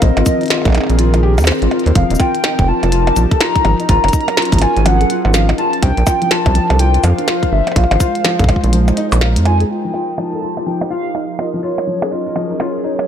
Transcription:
Already playing: C4 F4 A#4
0.02 A#1 D#3 C5 D#5, kick, closed hi-hat
0.14 G#1 F4 G#4, closed hi-hat, percussion blips
0.26 F3, kick, closed hi-hat, cabasa
0.41 D#4, closed hi-hat
0.43 closed hi-hat
0.46 closed hi-hat
0.48 F4, snare, closed hi-hat
0.50 closed hi-hat, percussion blips
0.54 percussion blips
0.58 percussion blips
0.62 A#1, kick, closed hi-hat, percussion blips
0.65 percussion blips
0.68 percussion blips
0.70 percussion blips
0.72 D#4, closed hi-hat, percussion blips
0.75 percussion blips
0.78 percussion blips
0.81 percussion blips
0.84 percussion blips
0.87 A#1, closed hi-hat, percussion blips
0.99 F4, closed hi-hat
1.14 F3, closed hi-hat, percussion blips
1.23 G4
1.38 D#2, closed hi-hat, percussion blips, cabasa
1.40 cabasa
1.43 percussion blips, cabasa
1.45 C5, snare, closed hi-hat, cabasa
1.47 cabasa
1.51 percussion blips, cabasa
1.55 cabasa
1.58 G#1 F4, closed hi-hat, cabasa
1.71 F4, closed hi-hat, percussion blips
1.79 closed hi-hat
1.86 D#2 C5, closed hi-hat
1.95 F1 F3 F5, kick, closed hi-hat
2.10 D#1 D#4, closed hi-hat
2.15 D#4, cabasa
2.20 F4 G5, kick, closed hi-hat, percussion blips
2.35 closed hi-hat
2.44 D#4, snare, closed hi-hat, percussion blips
2.59 F1, kick, closed hi-hat
2.68 F4 A5
2.73 G4
2.83 F1 F3, closed hi-hat, percussion blips
2.92 F4, closed hi-hat
3.07 closed hi-hat, percussion blips
3.16 A#1 F3, closed hi-hat, cabasa
3.31 A4, kick, closed hi-hat
3.41 F4 A#5, snare, closed hi-hat, percussion blips
3.56 F4, kick, closed hi-hat
3.65 G#1 F3 F#3, closed hi-hat, percussion blips
3.77 C#4 D#4, closed hi-hat
3.89 G#1 F4 A#5, kick, closed hi-hat
4.04 F#1, closed hi-hat, percussion blips
4.08 closed hi-hat
4.13 D#4, kick, closed hi-hat, cabasa
4.21 closed hi-hat
4.28 closed hi-hat, percussion blips
4.37 F4, snare, closed hi-hat
4.42 closed hi-hat
4.45 closed hi-hat
4.52 G#1 F3 G#4, kick, closed hi-hat
4.59 closed hi-hat
4.62 F4 G#5, closed hi-hat, percussion blips
4.77 G#1, closed hi-hat
4.86 F3 F#5, closed hi-hat, percussion blips
5.01 G#4, closed hi-hat
5.10 F4, closed hi-hat
5.25 G#1 F4, percussion blips
5.34 F3 F5, snare, closed hi-hat, cabasa
5.49 D#4, closed hi-hat, percussion blips
5.58 F3 F4 A5, closed hi-hat
5.72 D4, closed hi-hat
5.82 C2 D4 G5, kick, closed hi-hat, percussion blips
5.97 A#1, closed hi-hat
6.07 F4, kick, closed hi-hat, percussion blips, cabasa
6.22 F3, closed hi-hat
6.31 F4 A5, snare, closed hi-hat
6.46 C2, kick, closed hi-hat, percussion blips
6.55 F3 C5, closed hi-hat
6.70 C2 A4, closed hi-hat, percussion blips
6.79 F4 G5, closed hi-hat
6.94 F4, closed hi-hat
7.04 F2 F3 F5, closed hi-hat, percussion blips, cabasa
7.19 D4, closed hi-hat
7.28 F4 F5, snare, closed hi-hat, percussion blips
7.43 kick, closed hi-hat
7.52 G1 D4 E5
7.67 closed hi-hat, percussion blips
7.72 percussion blips
7.76 A#1 G#3 F4 F5, kick, closed hi-hat, percussion blips
7.84 percussion blips
7.91 G#1 F3, closed hi-hat, percussion blips
8.00 F4, kick, closed hi-hat, cabasa
8.15 D#4, closed hi-hat
8.24 F3, snare, closed hi-hat, percussion blips
8.39 A#1 G#4, kick, closed hi-hat
8.44 kick
8.49 F4, kick, closed hi-hat, percussion blips
8.56 kick
8.64 A#1 F4, closed hi-hat
8.73 F3, closed hi-hat
8.88 D#4, closed hi-hat, percussion blips
8.97 D#4, closed hi-hat
9.12 A#1, closed hi-hat, percussion blips, cabasa
9.21 F5, snare
9.36 F2, closed hi-hat
9.45 F4 G#5, closed hi-hat, percussion blips
9.60 G#4, closed hi-hat
9.69 F3 F4 A#4 G5
9.85 F3
9.94 F4, percussion blips
10.18 F3 A5, percussion blips
10.27 G4
10.33 A4
10.42 F4
10.57 F4, percussion blips
10.66 F3 G5
10.81 D#4, percussion blips
10.90 F4 F5
11.15 D#4, percussion blips
11.39 F#3 F4 D#5, percussion blips
11.54 F3
11.62 C#4 F4 C#5
11.78 percussion blips
11.87 F3
12.02 G#4, percussion blips
12.11 F4 D#5
12.26 F4 G#4
12.35 F3, percussion blips
12.50 D#4
12.60 F4 C#5, percussion blips
12.84 D#4 C#5
12.99 percussion blips

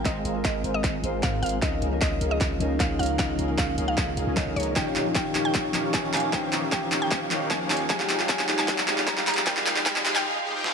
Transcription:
Already playing: G#3 C4 F4, riser
0.04 G#1 G#3 C4 F4 G#4 A#4 C5 D#5 F5, kick, clap, closed hi-hat
0.25 G#1 G#3 G#4 A#4 C5 F5, closed hi-hat
0.33 G#3 C4 F4
0.37 A#4
0.45 G#1 G#3 G#4 A#4 C5 D#5, kick, clap, closed hi-hat
0.64 G#1 G#3 G#4 A#4 C5 F5, closed hi-hat
0.74 D#5
0.84 G#1, kick, clap, closed hi-hat
1.02 G#1 G#3 C4 F4 G#4 A#4 C5 F5, closed hi-hat
1.23 G#2 G#3 G#4 A#4 C5 F5, kick, clap, closed hi-hat
1.43 G#1 G#3 G#4 A#4 C5 F5, closed hi-hat
1.46 closed hi-hat
1.49 closed hi-hat
1.61 C#2 C#3 F3 A#3 C#4 D#4 G#4 A#4 D#5 F5, kick, clap, closed hi-hat
1.82 C#2 C#4 G#4 A#4 D#5 F5, closed hi-hat
1.90 F3 C#4 D#4 A#4
2.01 C#2 C#4 A#4 D#5 F5, kick, clap, closed hi-hat
2.21 C#2 C#4 G#4 A#4 D#5 F5, closed hi-hat
2.31 D#5
2.41 C#2, kick, clap, closed hi-hat
2.58 C#2 F3 C#4 D#4 G#4 A#4 D#5 F5, closed hi-hat
2.62 A#4
2.80 C#2 C#4 G#4 A#4 F5, kick, clap, closed hi-hat
2.99 C#2 C#4 G#4 A#4 D#5 F5, closed hi-hat
3.03 closed hi-hat
3.06 closed hi-hat
3.18 C#2 F3 C#4 D#4 G#4 A#4 D#5 F5, kick, clap, closed hi-hat
3.39 C#2 C#4 G#4 A#4 D#5 F5, closed hi-hat
3.47 F3 C#4 D#4
3.51 A#4
3.58 C#2 G#4 F5, kick, clap, closed hi-hat
3.78 C#2 C#4 G#4 A#4 D#5 F5, closed hi-hat
3.88 F5
3.98 C#2 C#4 A#4 D#5, kick, clap, closed hi-hat
4.17 C#2 C#4 G#4 A#4 D#5 F5, closed hi-hat
4.27 C#2 C#4 G#4 A#4 D#5 G#5
4.36 F3 C#4 D#4 G#4 A#4 C#5 D#5, kick, clap, closed hi-hat
4.47 C#2 C#4 G#4 A#4 D#5 F5
4.56 C#2 C#4 G#4 A#4 C#5 D#5 A#5, closed hi-hat
4.60 closed hi-hat
4.63 closed hi-hat
4.75 D#1 D#3 F3 C#4 D#4 G4 C#5 F5 G5, kick, clap, closed hi-hat
4.95 D#1 D#3 D#4 G4 C#5 F5, clap, closed hi-hat
5.04 F3 C#4 D#4 G4
5.15 D#1 D#4 G4 F5 G5, kick, clap, closed hi-hat
5.35 D#1 D#3 D#4 G4 C#5 F5, clap, closed hi-hat
5.45 G5
5.54 D#1 D#3 D#4 G4 C#5 F5, kick, clap, closed hi-hat
5.72 D#1 D#3 F3 C#4 D#4 G4 C#5 F5, clap, closed hi-hat
5.94 D#1 D#3 G#5, kick, clap, closed hi-hat
6.13 D#1 D#3 D#4 G4 C#5 F5 G#5, clap, closed hi-hat, open hi-hat
6.32 D#1 D#3 F3 C#4 D#4 G4 C5 G5, kick, clap, closed hi-hat
6.52 D#1 D#3 D#4 G4 C#5 F5, clap, closed hi-hat
6.61 F3 C#4 D#4 G4
6.72 D#1 D#3 D#4 G4 C#5 F5 G5, kick, clap, closed hi-hat
6.92 D#1 D#3 D#4 G4 C#5 F5, clap, closed hi-hat
7.02 G5
7.11 D#1, kick, clap, closed hi-hat
7.29 D#1 D#3 F3 C#4 D#4 G4 A#4 C#5 F5, clap, closed hi-hat
7.51 D#2 D#3 D#4 G#5, kick, clap, closed hi-hat
7.70 D#2 D#3 D#4 G4 C#5 F5 G#5, clap, closed hi-hat, open hi-hat
7.77 closed hi-hat
7.89 F1 F3 G#3 D#4 G4 G#4 F5 G#5, kick, clap, closed hi-hat
8.00 clap
8.09 F1 F3 D#4 G4 G#4 F5, clap, closed hi-hat
8.18 F3 G#3 D#4 G4, clap
8.29 F1 F3 D#4 G4 G#4 G#5, kick, clap, closed hi-hat
8.39 clap
8.49 F1 F3 D#4 G4 G#4 F5, clap, closed hi-hat
8.59 G#5, clap
8.68 F1 F3 D#4 G4 G#4 F5, kick, clap, closed hi-hat
8.78 clap
8.86 F1 F3 G#3 D#4 G4 G#4 F5, clap, closed hi-hat
8.90 G4
8.98 clap
9.07 F1 F3 D#4 G4 G#4 F5 A#5, kick, clap, closed hi-hat
9.17 clap
9.27 F1 F3 D#4 G4 G#4 F5 A#5, clap, closed hi-hat, open hi-hat
9.34 clap, closed hi-hat
9.46 F1 F3 G#3 D#4 G4 G#4 A#4 F5 G5, kick, clap, closed hi-hat
9.57 clap
9.66 F1 F3 D#4 G4 G#4 F5, clap, closed hi-hat
9.74 F3 G#3 D#4, clap
9.79 G4
9.86 F1 D#4 G4 G#4 F5 G5, kick, clap, closed hi-hat
9.96 clap
10.06 F1 F3 D#4 G4 G#4 F5, clap, closed hi-hat
10.16 G5, clap
10.25 F3 D#4 G4 G#4 F5
10.45 F3 D#4 G4 G#4 F5
10.55 F3 D#4 G4 G#4 G5
10.64 F3 D#4 G4 G#4 F5, snare

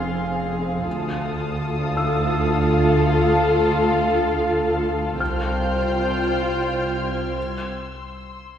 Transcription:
Already playing: F1 F2 C4 G#4 F5 C6 F6 A6
0.85 D2 F4 A4 F5 A5 D#6
1.97 E6
5.19 C2 F4 C5 F5 G5 C6 F6 G6
7.07 G#6
7.61 E6

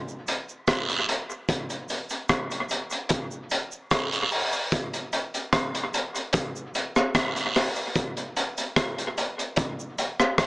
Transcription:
0.08 cabasa
0.27 closed hi-hat, cabasa
0.49 cabasa
0.67 kick, cross-stick, closed hi-hat, cabasa, long guiro
0.89 closed hi-hat, cabasa
1.09 closed hi-hat, cabasa
1.30 cabasa
1.49 kick, closed hi-hat, cabasa
1.70 closed hi-hat, cabasa
1.89 closed hi-hat, cabasa
2.09 closed hi-hat, cabasa
2.29 kick, cross-stick, closed hi-hat, cabasa
2.51 closed hi-hat, cabasa
2.69 closed hi-hat, cabasa
2.90 closed hi-hat, cabasa
3.09 kick, closed hi-hat, cabasa
3.31 cabasa
3.50 closed hi-hat, cabasa
3.72 cabasa
3.91 kick, cross-stick, closed hi-hat, cabasa, long guiro
4.12 closed hi-hat, cabasa
4.31 open hi-hat, cabasa
4.52 cabasa
4.72 kick, closed hi-hat, cabasa
4.94 closed hi-hat, cabasa
5.12 closed hi-hat, cabasa
5.34 closed hi-hat, cabasa
5.53 kick, cross-stick, closed hi-hat, cabasa
5.75 closed hi-hat, cabasa
5.94 closed hi-hat, cabasa
6.15 closed hi-hat, cabasa
6.33 kick, closed hi-hat, cabasa
6.56 cabasa
6.74 closed hi-hat, cabasa
6.96 cross-stick, cabasa
7.15 kick, cross-stick, closed hi-hat, cabasa, long guiro
7.36 closed hi-hat, cabasa
7.55 cross-stick, open hi-hat, cabasa
7.76 cabasa
7.95 kick, closed hi-hat, cabasa
8.17 closed hi-hat, cabasa
8.36 closed hi-hat, cabasa
8.57 closed hi-hat, cabasa
8.76 kick, cross-stick, closed hi-hat, cabasa
8.98 closed hi-hat, cabasa
9.17 closed hi-hat, cabasa
9.39 closed hi-hat, cabasa
9.56 kick, closed hi-hat, cabasa
9.79 cabasa
9.98 closed hi-hat, cabasa
10.20 cross-stick, cabasa
10.38 kick, cross-stick, closed hi-hat, cabasa, long guiro

